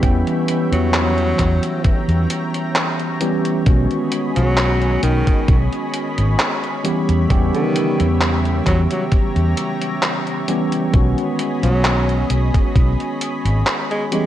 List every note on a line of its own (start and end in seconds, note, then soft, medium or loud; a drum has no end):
0.00 0.22 E2 medium
0.00 3.20 E3 medium
0.00 3.21 G3 medium
0.00 0.03 B3 medium
0.00 3.16 B3 medium
0.00 0.04 C#4 medium
0.00 3.16 C#4 medium
0.00 3.22 G4 medium
0.00 14.08 C#5 medium
0.00 3.63 E5 medium
0.00 3.63 G5 medium
0.00 1.35 B5 medium
0.00 kick loud
0.00 closed hi-hat medium
0.04 3.17 G5 loud
0.27 closed hi-hat soft
0.48 closed hi-hat medium
0.72 1.32 E2 loud
0.72 1.99 F#3 loud
0.72 closed hi-hat medium
0.94 clap loud
0.94 closed hi-hat medium
1.18 closed hi-hat soft
1.39 1.58 E2 medium
1.39 3.64 A#5 medium
1.39 kick medium
1.39 clap soft
1.39 closed hi-hat loud
1.63 closed hi-hat medium
1.84 kick loud
1.84 closed hi-hat medium
2.08 2.25 E2 medium
2.08 closed hi-hat soft
2.30 closed hi-hat loud
2.54 closed hi-hat medium
2.76 clap loud
2.76 closed hi-hat medium
3.00 closed hi-hat soft
3.20 3.61 E3 medium
3.20 3.61 G3 medium
3.20 3.61 B3 medium
3.20 3.62 C#4 medium
3.20 3.62 G4 medium
3.20 closed hi-hat loud
3.45 closed hi-hat medium
3.65 3.86 B1 medium
3.65 6.79 D#3 medium
3.65 6.79 G#3 medium
3.65 6.80 B3 medium
3.65 6.80 C#4 medium
3.65 6.81 F#4 loud
3.65 6.82 G#4 medium
3.65 6.82 D#5 medium
3.65 8.63 B5 medium
3.65 kick loud
3.65 closed hi-hat medium
3.91 closed hi-hat soft
4.12 closed hi-hat medium
4.36 4.96 B1 loud
4.36 5.02 F#3 loud
4.36 closed hi-hat medium
4.57 clap loud
4.57 closed hi-hat medium
4.82 closed hi-hat soft
5.03 5.22 B1 medium
5.03 5.58 D#3 loud
5.03 closed hi-hat loud
5.27 kick loud
5.27 closed hi-hat medium
5.48 5.67 B1 loud
5.48 kick loud
5.48 closed hi-hat medium
5.73 closed hi-hat soft
5.94 closed hi-hat medium
6.18 6.35 G#1 loud
6.18 closed hi-hat medium
6.39 clap loud
6.39 closed hi-hat medium
6.64 closed hi-hat soft
6.84 7.25 E3 medium
6.84 7.25 G3 medium
6.84 7.25 B3 medium
6.84 7.25 C#4 medium
6.84 10.90 G4 medium
6.84 7.25 G4 medium
6.84 10.90 E5 medium
6.84 closed hi-hat medium
7.09 7.26 E2 medium
7.09 closed hi-hat medium
7.29 7.49 E2 medium
7.29 10.42 C#3 medium
7.29 10.43 G3 medium
7.29 10.43 B3 medium
7.29 10.44 C#4 medium
7.29 10.44 G4 medium
7.29 kick loud
7.29 closed hi-hat medium
7.54 8.08 D#3 medium
7.54 closed hi-hat soft
7.76 closed hi-hat medium
8.00 8.59 E2 loud
8.00 closed hi-hat medium
8.21 clap loud
8.21 closed hi-hat soft
8.45 closed hi-hat soft
8.66 8.86 E2 medium
8.66 8.82 F#3 medium
8.66 10.91 A#5 medium
8.66 kick medium
8.66 clap soft
8.66 closed hi-hat medium
8.91 9.04 F#3 medium
8.91 closed hi-hat soft
9.12 kick loud
9.12 closed hi-hat soft
9.36 9.53 E2 medium
9.36 closed hi-hat soft
9.57 closed hi-hat medium
9.82 closed hi-hat medium
10.03 clap loud
10.03 closed hi-hat medium
10.27 closed hi-hat soft
10.48 10.88 E3 medium
10.48 10.89 G3 medium
10.48 10.89 B3 medium
10.48 10.89 C#4 medium
10.48 10.89 G4 medium
10.48 closed hi-hat medium
10.72 closed hi-hat medium
10.93 11.13 B1 loud
10.93 14.06 D#3 medium
10.93 14.07 G#3 medium
10.93 14.07 B3 medium
10.93 14.07 C#4 medium
10.93 14.08 F#4 loud
10.93 14.09 G#4 medium
10.93 14.09 D#5 medium
10.93 14.26 B5 medium
10.93 kick loud
10.93 closed hi-hat soft
11.18 closed hi-hat soft
11.39 closed hi-hat medium
11.63 12.23 B1 loud
11.63 12.30 F#3 medium
11.63 closed hi-hat soft
11.85 clap loud
11.85 closed hi-hat medium
12.09 closed hi-hat soft
12.30 12.49 B1 medium
12.30 closed hi-hat medium
12.54 kick loud
12.54 closed hi-hat soft
12.75 12.95 B1 loud
12.75 kick loud
12.75 closed hi-hat soft
13.00 closed hi-hat soft
13.21 closed hi-hat medium
13.45 13.62 G#1 loud
13.45 closed hi-hat medium
13.67 clap loud
13.67 closed hi-hat medium
13.91 14.04 G#3 medium
13.91 closed hi-hat soft
14.11 14.26 E3 medium
14.11 14.26 G3 medium
14.11 14.26 G#3 medium
14.11 14.26 B3 medium
14.11 14.26 C#4 medium
14.11 14.26 G4 medium
14.11 14.26 C#5 medium
14.11 14.26 E5 medium
14.11 14.26 G5 medium
14.11 closed hi-hat medium